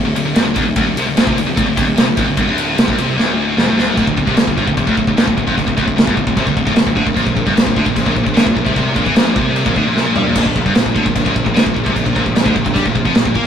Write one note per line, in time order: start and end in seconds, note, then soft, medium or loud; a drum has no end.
0.05 0.15 D1 medium
0.05 0.14 D2 medium
0.15 0.25 D1 medium
0.15 0.24 D2 medium
0.15 ride medium
0.25 0.35 D1 medium
0.25 0.35 D2 medium
0.35 0.45 A1 loud
0.35 0.45 A2 loud
0.35 snare loud
0.35 ride medium
0.45 0.55 D1 medium
0.45 0.54 D2 medium
0.55 0.66 D1 loud
0.55 0.64 D2 loud
0.55 kick loud
0.55 ride medium
0.66 0.76 D1 medium
0.66 0.75 D2 medium
0.76 0.85 D1 medium
0.76 0.86 D2 loud
0.76 kick loud
0.76 ride loud
0.86 0.95 D1 medium
0.86 0.97 D2 medium
0.96 1.05 C2 loud
0.96 1.06 C3 loud
0.96 ride medium
1.06 1.16 D1 medium
1.06 1.16 D2 medium
1.16 1.26 D1 loud
1.16 1.26 D2 loud
1.16 snare loud
1.16 ride loud
1.27 1.36 C2 loud
1.27 1.36 C3 loud
1.27 kick loud
1.37 1.46 D1 medium
1.37 1.45 D2 medium
1.37 ride medium
1.47 1.56 D1 medium
1.47 1.56 D2 medium
1.56 1.66 A1 loud
1.56 1.66 A2 loud
1.56 kick loud
1.56 ride loud
1.67 1.76 D1 medium
1.67 1.76 D2 medium
1.77 1.86 D1 loud
1.77 1.85 D2 loud
1.77 kick loud
1.77 ride medium
1.86 1.97 D1 medium
1.86 1.97 D2 medium
1.97 2.07 C2 loud
1.97 2.06 C3 loud
1.97 snare loud
1.97 ride medium
2.07 2.17 D1 medium
2.07 2.17 D2 medium
2.17 2.26 F1 loud
2.17 2.26 F2 loud
2.17 kick loud
2.17 ride medium
2.27 2.37 D1 medium
2.27 2.37 D2 medium
2.37 2.47 G1 loud
2.37 2.46 G2 loud
2.37 kick medium
2.37 ride medium
2.47 2.76 D1 loud
2.47 2.76 D2 loud
2.58 ride medium
2.76 2.87 C2 loud
2.76 2.86 C3 loud
2.76 snare loud
2.76 ride loud
2.87 2.97 D1 loud
2.87 2.96 D2 loud
2.87 kick loud
2.97 3.16 C2 medium
2.97 3.17 C3 loud
2.97 ride medium
3.17 3.55 D1 loud
3.17 3.56 D2 loud
3.17 snare medium
3.57 3.66 F1 loud
3.57 3.66 F2 loud
3.57 snare medium
3.68 3.77 A1 medium
3.68 3.77 A2 loud
3.77 3.96 D1 loud
3.77 3.95 D2 loud
3.77 snare medium
3.96 4.06 D1 loud
3.96 4.05 D2 loud
3.96 kick medium
3.96 china medium
4.06 4.17 D1 medium
4.06 4.16 D2 medium
4.06 kick medium
4.17 4.27 D1 medium
4.17 4.26 D2 medium
4.17 kick medium
4.27 4.36 C2 medium
4.27 4.36 C3 medium
4.27 kick medium
4.37 4.47 D1 medium
4.37 4.46 D2 medium
4.37 snare loud
4.37 china medium
4.47 4.57 D1 medium
4.47 4.57 D2 medium
4.47 kick medium
4.58 4.67 G1 medium
4.58 4.67 G2 loud
4.58 kick medium
4.67 4.76 D1 medium
4.67 4.76 D2 medium
4.67 kick medium
4.77 4.86 D1 medium
4.77 4.86 D2 medium
4.77 kick medium
4.77 china medium
4.87 4.96 D1 loud
4.87 4.96 D2 loud
4.87 kick medium
4.97 5.07 D1 medium
4.97 5.07 D2 medium
4.97 kick medium
5.07 5.16 D1 medium
5.07 5.17 D2 medium
5.07 kick medium
5.17 5.27 G1 loud
5.17 5.27 G2 loud
5.17 snare loud
5.17 china medium
5.27 5.37 D1 medium
5.27 5.36 D2 medium
5.27 kick medium
5.37 5.47 D1 medium
5.37 5.47 D2 medium
5.37 kick medium
5.47 5.57 F1 medium
5.47 5.56 F2 loud
5.47 kick medium
5.57 5.67 D1 medium
5.57 5.65 D2 medium
5.57 kick medium
5.57 china medium
5.67 5.77 D1 medium
5.67 5.76 D2 medium
5.67 kick medium
5.77 5.87 D1 medium
5.77 5.85 D2 loud
5.77 kick medium
5.87 5.97 D1 medium
5.87 5.95 D2 medium
5.87 kick medium
5.96 6.07 D1 medium
5.96 6.06 D2 medium
5.96 snare loud
5.96 china medium
6.06 6.16 G1 loud
6.06 6.16 G2 loud
6.06 kick loud
6.17 6.26 D1 medium
6.17 6.26 D2 medium
6.17 kick medium
6.27 6.36 D1 medium
6.27 6.36 D2 medium
6.27 kick loud
6.37 6.46 C2 loud
6.37 6.46 C3 loud
6.37 kick loud
6.37 china medium
6.47 6.56 D1 medium
6.47 6.56 D2 medium
6.47 kick medium
6.57 6.66 D1 medium
6.57 6.66 D2 medium
6.57 kick medium
6.67 6.75 A1 medium
6.67 6.76 A2 loud
6.67 kick medium
6.76 6.86 D1 medium
6.76 6.86 D2 medium
6.76 snare loud
6.76 china medium
6.87 6.96 D1 medium
6.87 6.97 D2 medium
6.87 kick medium
6.96 7.06 D2 loud
6.96 7.06 D3 loud
6.96 kick medium
7.06 7.16 D1 medium
7.06 7.15 D2 medium
7.06 kick medium
7.16 7.26 A#1 medium
7.16 7.25 A#2 loud
7.16 kick medium
7.16 china medium
7.26 7.36 A#1 medium
7.26 7.35 A#2 medium
7.26 kick medium
7.36 7.46 A#1 medium
7.36 7.46 A#2 medium
7.36 kick medium
7.46 7.55 G1 loud
7.46 7.56 G2 loud
7.46 kick medium
7.56 7.65 A#1 medium
7.56 7.65 A#2 medium
7.56 snare loud
7.56 china medium
7.67 7.76 A#1 medium
7.67 7.77 A#2 medium
7.67 kick medium
7.76 7.86 D2 medium
7.76 7.86 D3 loud
7.76 kick medium
7.86 7.95 A#1 medium
7.86 7.94 A#2 medium
7.86 kick loud
7.96 8.06 A#1 medium
7.96 8.04 A#2 medium
7.96 kick medium
7.96 china medium
8.05 8.16 A#1 loud
8.05 8.14 A#2 loud
8.05 kick medium
8.15 8.26 A#1 medium
8.15 8.23 A#2 medium
8.15 kick medium
8.24 8.36 A#1 medium
8.24 8.35 A#2 medium
8.24 kick medium
8.34 8.46 D2 medium
8.34 8.45 D3 loud
8.34 snare loud
8.34 china medium
8.45 8.56 A#1 medium
8.45 8.54 A#2 medium
8.45 kick medium
8.55 8.66 A#1 medium
8.55 8.65 A#2 medium
8.55 kick medium
8.65 8.75 C2 medium
8.65 8.73 C3 medium
8.65 kick medium
8.74 8.95 C2 medium
8.74 8.94 C3 loud
8.74 kick medium
8.74 china medium
8.94 9.06 A#1 medium
8.94 9.05 A#2 loud
8.94 kick loud
9.04 9.16 E2 medium
9.04 9.15 E3 loud
9.04 kick medium
9.14 9.35 A#1 medium
9.14 9.35 A#2 loud
9.14 snare loud
9.14 china medium
9.35 9.64 C2 medium
9.35 9.64 C3 loud
9.35 kick loud
9.56 china medium
9.65 9.76 A#1 loud
9.65 9.75 A#2 loud
9.65 kick loud
9.74 9.86 D2 loud
9.74 9.85 D3 medium
9.74 kick medium
9.85 9.96 A#1 medium
9.85 9.93 A#2 medium
9.93 10.06 C2 medium
9.93 10.04 C3 loud
9.93 snare medium
10.05 10.16 A#1 loud
10.05 10.15 A#2 loud
10.15 10.26 G2 loud
10.15 10.25 G3 loud
10.15 floor tom medium
10.25 10.35 A#1 medium
10.25 10.34 A#2 loud
10.35 10.45 A#1 medium
10.35 10.45 A#2 loud
10.35 kick loud
10.35 china medium
10.35 splash medium
10.35 crash loud
10.46 10.55 A#1 medium
10.46 10.55 A#2 medium
10.46 kick medium
10.56 10.65 A#1 medium
10.56 10.66 A#2 medium
10.56 kick medium
10.66 10.75 G1 loud
10.66 10.75 G2 loud
10.66 kick medium
10.75 10.85 A#1 medium
10.75 10.85 A#2 medium
10.75 snare loud
10.75 china medium
10.86 10.95 A#1 medium
10.86 10.96 A#2 medium
10.86 kick medium
10.95 11.05 D2 medium
10.95 11.05 D3 loud
10.95 kick medium
11.05 11.15 A#1 medium
11.05 11.14 A#2 medium
11.05 kick medium
11.15 11.25 A#1 medium
11.15 11.24 A#2 medium
11.15 kick loud
11.15 china medium
11.25 11.35 A#1 loud
11.25 11.33 A#2 loud
11.25 kick medium
11.34 11.45 A#1 medium
11.34 11.43 A#2 medium
11.34 kick medium
11.44 11.55 A#1 medium
11.44 11.55 A#2 medium
11.44 kick medium
11.54 11.66 D2 loud
11.54 11.65 D3 loud
11.54 snare loud
11.54 china medium
11.65 11.75 A#1 medium
11.65 11.74 A#2 medium
11.65 kick medium
11.75 11.85 A#1 medium
11.75 11.84 A#2 medium
11.75 kick medium
11.85 11.95 C2 loud
11.85 11.95 C3 loud
11.85 kick medium
11.96 12.05 A#1 medium
11.96 12.04 A#2 medium
11.96 kick medium
11.96 china medium
12.05 12.15 A#1 medium
12.05 12.14 A#2 medium
12.05 kick medium
12.15 12.25 A#1 loud
12.15 12.24 A#2 loud
12.15 kick medium
12.25 12.35 A#1 medium
12.25 12.35 A#2 medium
12.25 kick medium
12.36 12.45 A#1 medium
12.36 12.46 A#2 medium
12.36 snare loud
12.36 china medium
12.45 12.55 D2 loud
12.45 12.55 D3 loud
12.45 kick loud
12.56 12.65 A#1 medium
12.56 12.64 A#2 medium
12.56 kick medium
12.65 12.75 A#1 medium
12.65 12.75 A#2 medium
12.65 kick loud
12.74 12.85 G2 loud
12.74 12.84 G3 loud
12.74 kick loud
12.74 china medium
12.85 12.95 A#1 medium
12.85 12.94 A#2 medium
12.85 kick medium
12.95 13.05 A#1 medium
12.95 13.05 A#2 medium
12.95 kick medium
13.05 13.15 F2 loud
13.05 13.15 F3 loud
13.05 kick medium
13.15 13.25 A#1 medium
13.15 13.24 A#2 medium
13.15 snare loud
13.15 china medium
13.25 13.35 A#1 medium
13.25 13.35 A#2 medium
13.25 kick medium
13.35 13.45 A#2 loud
13.35 13.44 A#3 loud
13.35 kick medium